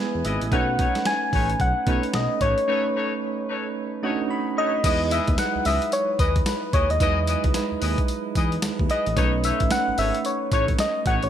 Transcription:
Already playing: synth keys G#3 B3 E4 B4 G#5, soft synth lead E5
0.15 analog synth bass E2
0.24 analog synth bass G#1, horn section E4 G#4 B4 D#5, synth keys E5, closed hi-hat
0.42 analog synth bass A1, closed hi-hat
0.51 analog synth bass B1, synth keys A3 C#4 D#4 B4, horn section D#4 A4 B4 C#5, soft synth lead F#5, kick, closed hi-hat
0.78 horn section D#4 A4 B4 C#5, kick, closed hi-hat
0.95 snare, closed hi-hat
1.05 soft synth lead G#5, snare, closed hi-hat
1.32 analog synth bass A1, horn section D#4 A4 B4 C#5, kick, open hi-hat
1.50 closed hi-hat
1.60 analog synth bass B1, soft synth lead F#5, kick, closed hi-hat
1.86 analog synth bass B2, synth keys A3 C#4 D#4 B4, horn section D#4 A4 B4 C#5, kick, closed hi-hat
2.03 closed hi-hat
2.14 analog synth bass B1, soft synth lead D#5, snare, closed hi-hat
2.41 analog synth bass A1, horn section D#4 A4 B4 C#5, soft synth lead C#5, kick, closed hi-hat
2.58 closed hi-hat
2.67 synth keys A3 C#4 D#4 B4, horn section D#4 A4 B4 C#5
2.95 horn section D#4 A4 B4 C#5
3.49 horn section D#4 A4 B4 C#5
4.03 synth keys A3 C#4 D4 F#4 D#5, horn section D#4 A4 B4 C#5
4.10 synth keys D#4
4.30 synth keys B5
4.57 horn section D#4 A4 B4 C#5, soft synth lead D#5
4.84 analog synth bass E2, synth keys G#3 D#4 E4 B4, horn section E4 G#4 B4 D#5, kick, closed hi-hat, crash, tambourine
5.11 horn section E4 G#4 B4 D#5, soft synth lead E5, closed hi-hat, tambourine
5.28 analog synth bass D#2, kick, closed hi-hat
5.38 synth keys F#3 D#4 E4 B4, soft synth lead F#5, snare, closed hi-hat, tambourine
5.45 synth keys G#3
5.55 analog synth bass C#2
5.65 analog synth bass C#2, horn section E4 G#4 B4 D#5, soft synth lead E5, open hi-hat, tambourine
5.82 closed hi-hat
5.92 soft synth lead C#5, closed hi-hat, tambourine
6.19 analog synth bass D#2, horn section E4 G#4 B4 D#5, soft synth lead B4, kick, closed hi-hat, tambourine
6.36 kick, closed hi-hat
6.46 soft synth lead B4, snare, closed hi-hat, tambourine
6.73 analog synth bass D#2, horn section E4 G#4 B4 D#5, soft synth lead C#5, kick, closed hi-hat
6.90 analog synth bass D#2, soft synth lead D#5, closed hi-hat
7.00 analog synth bass E2, synth keys F#3 D#4 E4 B4, horn section E4 G#4 B4 D#5, kick, closed hi-hat, tambourine
7.07 synth keys G#3
7.27 horn section E4 G#4 B4 D#5, closed hi-hat, tambourine
7.44 analog synth bass C#2, kick, closed hi-hat
7.54 synth keys G#3 D#4 E4 B4, snare, closed hi-hat, tambourine
7.71 analog synth bass D#2
7.81 analog synth bass D#2, horn section E4 G#4 B4 D#5, open hi-hat, tambourine
7.98 kick, closed hi-hat
8.08 closed hi-hat, tambourine
8.35 analog synth bass E2, horn section E4 G#4 B4 D#5, kick, closed hi-hat, tambourine
8.52 closed hi-hat
8.62 analog synth bass D#2, snare, closed hi-hat, tambourine
8.79 analog synth bass D#2, kick
8.89 horn section E4 G#4 B4 D#5, soft synth lead D#5, closed hi-hat
9.06 analog synth bass A1, closed hi-hat
9.16 analog synth bass B1, synth keys A3 C#4 D#4 B4, horn section D#4 A4 B4 C#5, kick, closed hi-hat, tambourine
9.43 horn section D#4 A4 B4 C#5, soft synth lead E5, closed hi-hat, tambourine
9.60 analog synth bass A1, kick, closed hi-hat
9.71 synth keys A3 C#4 D#4 B4, soft synth lead F#5, snare, closed hi-hat, tambourine
9.88 analog synth bass G#1
9.97 analog synth bass G#1, horn section D#4 A4 B4 C#5, soft synth lead E5, open hi-hat, tambourine
10.14 closed hi-hat
10.25 soft synth lead C#5, closed hi-hat, tambourine
10.51 analog synth bass A1, horn section D#4 A4 B4 C#5, soft synth lead C#5, kick, closed hi-hat, tambourine
10.68 kick, closed hi-hat
10.78 soft synth lead D#5, snare, closed hi-hat, tambourine
11.05 analog synth bass A1, horn section D#4 A4 B4 C#5, soft synth lead F#5, kick, closed hi-hat
11.23 analog synth bass A1, soft synth lead C#5, closed hi-hat

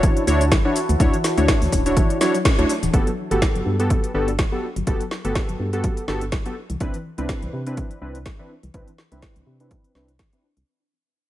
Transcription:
Already playing: synth keys D4 E4 F#4 C#5, ambient pad E4 F#4 C#5 A5
0.03 synth arpeggio sound E3, kick, closed hi-hat, shaker
0.17 closed hi-hat
0.27 fm bass D2, synth arpeggio sound D4, synth keys D4 E4 F#4 C#5, open hi-hat, shaker
0.41 synth arpeggio sound D4, closed hi-hat, shaker
0.52 synth arpeggio sound F#3, kick, snare, closed hi-hat, shaker
0.65 synth arpeggio sound E3, synth keys D4 E4 F#4 C#5
0.76 open hi-hat, shaker
0.89 fm bass D2, synth arpeggio sound E3, closed hi-hat, shaker
1.00 fm bass D2, synth keys D4 E4 F#4 C#5, ambient pad D4, kick, closed hi-hat, shaker
1.13 synth arpeggio sound E3, closed hi-hat
1.24 snare, open hi-hat, shaker
1.38 fm bass D2, synth arpeggio sound A3, synth keys D4 E4 F#4 C#5, closed hi-hat, shaker
1.48 kick, snare, closed hi-hat, shaker
1.62 fm bass D2, synth arpeggio sound E3, open hi-hat
1.72 fm bass D1, synth arpeggio sound C#4, kick, open hi-hat, shaker
1.86 synth keys D4 E4 F#4 C#5, closed hi-hat, shaker
1.97 synth arpeggio sound E3, kick, closed hi-hat, shaker
2.10 closed hi-hat
2.21 synth arpeggio sound F#3, synth keys D4 E4 F#4 C#5, snare, open hi-hat, shaker
2.35 synth arpeggio sound F#3, closed hi-hat, shaker
2.45 synth arpeggio sound C#4, kick, snare, closed hi-hat, shaker
2.58 fm bass D2, synth arpeggio sound A3, synth keys D4 E4 F#4 C#5, closed hi-hat
2.69 open hi-hat, shaker
2.83 fm bass D1, synth arpeggio sound E3, closed hi-hat, shaker
2.93 fm bass G1, synth keys B3 F#4 G4 A4, kick, closed hi-hat
3.07 synth arpeggio sound F#3, closed hi-hat
3.31 fm bass G1, synth arpeggio sound A3, synth keys B3 F#4 G4 A4, closed hi-hat
3.42 kick, snare, closed hi-hat
3.55 fm bass G1, synth arpeggio sound F#3, closed hi-hat
3.66 fm bass G2, synth arpeggio sound B3
3.79 synth keys B3 F#4 G4 A4, closed hi-hat
3.90 synth arpeggio sound F#3, kick, closed hi-hat
4.04 closed hi-hat
4.14 fm bass G1, synth keys B3 F#4 G4 A4, synth arpeggio sound D4
4.28 synth arpeggio sound D4, closed hi-hat
4.39 synth arpeggio sound G3, kick, snare, closed hi-hat
4.52 synth arpeggio sound F#3, synth keys B3 F#4 G4 A4
4.76 fm bass G1, synth arpeggio sound F#3, closed hi-hat
4.87 fm bass G1, synth keys B3 F#4 G4 A4, kick, closed hi-hat
5.00 synth arpeggio sound F#3, closed hi-hat
5.11 snare
5.25 fm bass G1, synth arpeggio sound A3, synth keys B3 F#4 G4 A4, closed hi-hat
5.35 kick, snare, closed hi-hat
5.49 fm bass G1, synth arpeggio sound F#3, closed hi-hat
5.59 fm bass G2, synth arpeggio sound B3
5.73 synth keys B3 F#4 G4 A4, closed hi-hat
5.84 synth arpeggio sound F#3, kick, closed hi-hat
5.97 closed hi-hat
6.08 fm bass G1, synth keys B3 F#4 G4 A4, synth arpeggio sound D4, snare
6.21 synth arpeggio sound D4, closed hi-hat
6.32 synth arpeggio sound G3, kick, snare, closed hi-hat
6.46 synth arpeggio sound F#3, synth keys B3 F#4 G4 A4, closed hi-hat
6.70 fm bass C2, synth arpeggio sound E3, closed hi-hat
6.80 fm bass C2, synth keys C4 D4 E4 B4, kick, closed hi-hat
6.94 synth arpeggio sound E3, closed hi-hat
7.18 fm bass C2, synth arpeggio sound B3, synth keys C4 D4 E4 B4, closed hi-hat
7.29 kick, snare, closed hi-hat
7.42 fm bass C2, synth arpeggio sound E3, closed hi-hat
7.53 fm bass C3, synth arpeggio sound C4
7.67 synth keys C4 D4 E4 B4, closed hi-hat
7.77 synth arpeggio sound E3, kick, closed hi-hat
7.91 closed hi-hat
8.02 fm bass C2, synth keys C4 D4 E4 B4, synth arpeggio sound D4
8.15 synth arpeggio sound D4, closed hi-hat
8.26 synth arpeggio sound G3, kick, snare, closed hi-hat
8.39 synth arpeggio sound E3, synth keys C4 D4 E4 B4
8.63 fm bass C2, synth arpeggio sound E3, closed hi-hat
8.74 fm bass C2, synth keys C4 D4 E4 B4, kick, closed hi-hat
8.88 synth arpeggio sound E3, closed hi-hat
8.98 snare
9.12 fm bass C2, synth arpeggio sound B3, synth keys C4 D4 E4 B4, closed hi-hat
9.22 kick, snare, closed hi-hat
9.36 fm bass C2, synth arpeggio sound E3, closed hi-hat
9.47 fm bass C3, synth arpeggio sound C4
9.60 synth keys C4 D4 E4 B4, closed hi-hat
9.71 synth arpeggio sound E3, kick, closed hi-hat
9.84 closed hi-hat
9.95 fm bass C2, synth keys C4 D4 E4 B4, synth arpeggio sound D4, snare
10.08 closed hi-hat
10.19 synth arpeggio sound E3, kick, snare, closed hi-hat
10.33 synth arpeggio sound C4, synth keys C4 D4 E4 B4, closed hi-hat
10.43 synth arpeggio sound D4
10.57 fm bass C2, synth arpeggio sound C4, closed hi-hat

